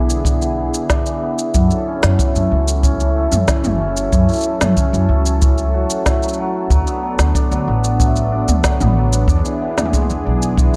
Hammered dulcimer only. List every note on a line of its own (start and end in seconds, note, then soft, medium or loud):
0.00 0.24 E3 medium
0.00 0.41 B3 medium
0.00 0.90 D4 medium
0.25 0.56 E3 medium
0.42 1.22 B3 medium
0.58 1.05 E3 medium
0.90 1.94 D4 medium
1.06 1.54 E3 medium
1.23 5.37 B3 medium
1.55 2.19 E3 medium
1.88 2.83 C#4 medium
2.20 2.50 E3 medium
2.35 3.16 A3 medium
2.51 2.99 E3 medium
2.84 3.80 C#4 medium
3.00 3.47 E3 medium
3.16 4.29 A3 medium
3.48 4.12 E3 medium
3.81 4.77 C#4 medium
4.13 4.45 E3 medium
4.29 5.09 A3 medium
4.46 4.93 E3 medium
4.78 7.41 C#4 medium
4.94 5.41 E3 medium
5.10 6.06 A3 medium
5.42 6.76 E3 medium
5.74 8.99 F#4 medium
6.07 8.00 A3 medium
6.23 6.38 F#3 medium
6.39 6.69 F#3 medium
6.71 7.02 F#3 medium
6.87 7.67 B3 medium
7.03 7.51 F#3 medium
7.35 8.32 D4 medium
7.52 8.63 F#3 medium
7.68 8.80 B3 medium
8.00 10.00 A3 medium
8.32 9.29 D4 medium
8.64 8.96 F#3 medium
8.81 9.61 B3 medium
8.97 9.34 F#3 medium
9.29 10.25 D4 medium
9.45 10.56 E3 medium
9.62 10.73 B3 medium
9.94 10.76 G#3 medium
10.25 10.76 D4 medium
10.57 10.76 E3 medium